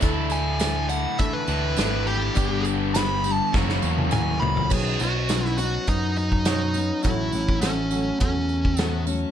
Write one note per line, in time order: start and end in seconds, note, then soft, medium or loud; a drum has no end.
0.00 1.05 D2 medium
0.00 0.30 D3 medium
0.00 0.31 E3 medium
0.00 2.33 A3 medium
0.00 0.31 A3 loud
0.00 0.44 D4 medium
0.00 2.33 D4 medium
0.00 1.47 D4 loud
0.00 0.44 E4 medium
0.00 2.34 E4 medium
0.00 0.31 E4 medium
0.00 0.29 A4 loud
0.00 0.45 A4 loud
0.00 kick loud
0.00 closed hi-hat medium
0.00 tambourine medium
0.30 0.60 A3 soft
0.30 0.60 E4 soft
0.30 0.60 A4 soft
0.30 0.89 G#5 loud
0.30 tambourine medium
0.59 0.90 E3 medium
0.59 0.91 A3 medium
0.59 1.02 D4 medium
0.59 1.03 E4 medium
0.59 0.89 E4 medium
0.59 1.03 A4 medium
0.59 0.87 A4 medium
0.59 snare loud
0.59 closed hi-hat medium
0.59 tambourine loud
0.88 1.18 A3 soft
0.88 1.19 E4 medium
0.88 1.19 A4 medium
0.88 1.18 F#5 loud
0.88 tambourine medium
1.18 1.77 D3 medium
1.18 1.76 E3 medium
1.18 1.77 A3 medium
1.18 1.61 D4 medium
1.18 1.61 E4 medium
1.18 1.78 E4 medium
1.18 1.62 A4 medium
1.18 1.78 A4 medium
1.18 1.33 E5 loud
1.18 kick loud
1.18 closed hi-hat medium
1.33 2.05 B4 loud
1.48 1.74 D2 medium
1.48 1.75 D3 medium
1.48 1.76 A3 medium
1.48 1.76 D4 medium
1.48 1.76 E4 medium
1.48 tambourine medium
1.76 2.29 G#1 medium
1.76 2.34 D3 medium
1.76 2.36 E3 medium
1.76 2.36 A3 medium
1.76 2.20 D4 medium
1.76 2.35 D4 medium
1.76 2.20 E4 medium
1.76 2.35 E4 medium
1.76 2.21 A4 medium
1.76 snare loud
1.76 closed hi-hat medium
1.76 tambourine medium
1.80 2.36 A4 medium
2.07 2.64 G4 medium
2.07 tambourine soft
2.34 3.39 G1 medium
2.34 2.94 G2 medium
2.34 2.94 D3 medium
2.34 2.93 G3 loud
2.34 3.51 B3 medium
2.34 2.95 B3 medium
2.34 2.78 D4 medium
2.34 3.52 D4 medium
2.34 2.95 D4 medium
2.34 3.52 G4 medium
2.34 2.79 G4 medium
2.34 2.95 G4 medium
2.34 2.79 B4 medium
2.34 kick loud
2.34 closed hi-hat medium
2.34 tambourine medium
2.65 tambourine medium
2.94 3.24 G3 medium
2.94 3.25 B3 medium
2.94 3.37 D4 medium
2.94 3.25 D4 medium
2.94 3.37 G4 medium
2.94 3.38 B4 medium
2.94 3.33 B5 loud
2.94 snare loud
2.94 closed hi-hat medium
2.94 tambourine loud
2.98 3.23 G4 medium
3.24 3.55 B3 soft
3.24 3.55 D4 medium
3.24 3.54 G4 medium
3.24 tambourine medium
3.28 3.54 G3 medium
3.33 3.51 A5 loud
3.52 3.79 F#1 loud
3.52 4.12 F#2 medium
3.52 4.13 C#3 medium
3.52 4.10 E3 medium
3.52 4.69 A#3 medium
3.52 4.12 A#3 medium
3.52 4.12 C#4 medium
3.52 3.95 E4 medium
3.52 4.49 E4 medium
3.52 4.69 F#4 medium
3.52 3.96 F#4 medium
3.52 4.13 F#4 loud
3.52 3.96 A#4 medium
3.52 kick loud
3.52 snare medium
3.52 tambourine soft
3.69 snare medium
3.82 4.09 E2 medium
3.82 tambourine medium
3.98 high tom medium
4.10 4.39 D#2 medium
4.10 4.70 E3 medium
4.10 4.71 A#3 medium
4.10 4.71 C#4 medium
4.10 4.53 E4 medium
4.10 4.54 F#4 medium
4.10 4.55 A#4 medium
4.10 4.41 G#5 medium
4.10 mid tom medium
4.10 tambourine medium
4.15 4.70 F#4 medium
4.40 4.68 C#2 medium
4.40 4.62 A3 medium
4.40 4.63 B3 medium
4.40 4.69 B5 medium
4.40 floor tom medium
4.45 4.65 C4 medium
4.45 4.66 D4 medium
4.50 4.67 E4 medium
4.50 4.68 F4 medium
4.56 4.70 G4 medium
4.56 4.72 A4 medium
4.56 floor tom medium
4.62 4.73 B4 medium
4.62 4.74 C5 medium
4.67 4.99 B2 medium
4.67 5.00 D#3 medium
4.67 7.02 B3 medium
4.67 5.12 C#4 loud
4.67 7.02 C#4 medium
4.67 7.02 D#4 medium
4.67 5.13 D#4 medium
4.67 5.13 B4 loud
4.67 4.76 D5 medium
4.67 tambourine medium
4.71 4.97 B1 medium
4.71 5.00 F#3 medium
4.71 5.00 B3 medium
4.71 4.99 C#4 medium
4.71 4.98 F#4 medium
4.71 5.02 G#4 loud
4.71 kick loud
4.71 crash loud
4.99 5.77 B1 medium
4.99 5.27 F#3 soft
4.99 5.28 B3 soft
4.99 5.28 C#4 soft
4.99 5.29 F#4 medium
4.99 5.47 F#4 loud
4.99 tambourine medium
5.28 5.58 B2 medium
5.28 5.58 D#3 medium
5.28 5.58 F#3 medium
5.28 5.57 B3 medium
5.28 5.50 C#4 medium
5.28 5.57 C#4 medium
5.28 5.50 D#4 medium
5.28 5.55 F#4 medium
5.28 5.51 B4 medium
5.28 snare loud
5.28 closed hi-hat medium
5.28 tambourine loud
5.45 5.57 E4 loud
5.45 snare soft
5.56 5.87 F#3 soft
5.56 5.88 B3 soft
5.56 5.79 C#4 medium
5.56 5.88 C#4 medium
5.56 5.80 D#4 medium
5.56 5.87 F#4 soft
5.56 5.88 F#4 medium
5.56 5.80 F#4 medium
5.56 tambourine medium
5.87 6.90 F#2 medium
5.87 6.47 F#3 medium
5.87 6.45 B3 medium
5.87 6.30 C#4 medium
5.87 6.47 C#4 medium
5.87 6.30 D#4 medium
5.87 6.17 D#4 medium
5.87 6.48 F#4 medium
5.87 6.31 B4 medium
5.87 kick loud
5.87 closed hi-hat medium
5.87 tambourine soft
6.16 6.45 D#4 medium
6.16 tambourine soft
6.32 kick medium
6.45 6.75 B2 medium
6.45 6.75 D#3 medium
6.45 6.76 F#3 medium
6.45 6.75 B3 medium
6.45 6.88 C#4 medium
6.45 6.74 C#4 medium
6.45 6.89 D#4 medium
6.45 7.01 D#4 medium
6.45 6.73 F#4 medium
6.45 6.89 C#5 medium
6.45 snare loud
6.45 closed hi-hat medium
6.45 tambourine medium
6.74 7.05 F#3 soft
6.74 7.05 B3 soft
6.74 7.04 C#4 medium
6.74 7.04 F#4 medium
6.74 tambourine medium
7.03 7.30 A1 medium
7.03 7.34 A2 medium
7.03 7.34 E3 medium
7.03 7.35 F#3 medium
7.03 9.31 A3 medium
7.03 7.33 A3 medium
7.03 7.46 C#4 medium
7.03 9.31 C#4 medium
7.03 7.59 E4 medium
7.03 7.47 F#4 medium
7.03 9.31 F#4 medium
7.03 7.47 A4 loud
7.03 kick loud
7.03 closed hi-hat medium
7.03 tambourine medium
7.07 7.33 C#4 medium
7.07 7.31 F#4 medium
7.32 8.10 A1 medium
7.32 7.61 F#3 soft
7.32 7.62 A3 medium
7.32 7.62 C#4 medium
7.32 7.62 F#4 medium
7.32 tambourine medium
7.49 kick medium
7.61 7.92 A2 medium
7.61 7.92 E3 medium
7.61 7.91 F#3 medium
7.61 7.91 A3 medium
7.61 8.19 C#4 medium
7.61 7.84 C#4 medium
7.61 7.89 C#4 medium
7.61 7.84 F#4 medium
7.61 7.89 F#4 medium
7.61 7.84 A4 medium
7.61 snare loud
7.61 closed hi-hat medium
7.61 tambourine medium
7.90 8.18 F#3 soft
7.90 8.19 A3 soft
7.90 8.20 C#4 soft
7.90 8.13 C#4 medium
7.90 8.20 F#4 medium
7.90 8.13 F#4 medium
7.90 8.14 A4 medium
7.90 tambourine medium
8.19 9.24 E2 medium
8.19 8.79 F#3 medium
8.19 8.78 A3 medium
8.19 8.63 C#4 medium
8.19 8.80 C#4 medium
8.19 8.79 C#4 medium
8.19 8.64 F#4 medium
8.19 8.79 F#4 medium
8.19 8.64 A4 medium
8.19 kick loud
8.19 closed hi-hat medium
8.19 tambourine soft
8.49 tambourine soft
8.65 kick medium
8.77 9.08 A2 medium
8.77 9.08 E3 medium
8.77 9.09 F#3 medium
8.77 9.07 A3 medium
8.77 9.04 B3 medium
8.77 9.06 C#4 medium
8.77 9.22 C#4 medium
8.77 9.05 F#4 medium
8.77 9.22 F#4 medium
8.77 9.22 A4 medium
8.77 snare loud
8.77 closed hi-hat medium
8.77 tambourine medium
9.06 9.31 A3 medium
9.06 9.31 C#4 medium
9.06 9.31 F#4 medium
9.06 tambourine medium
9.10 9.31 F#3 soft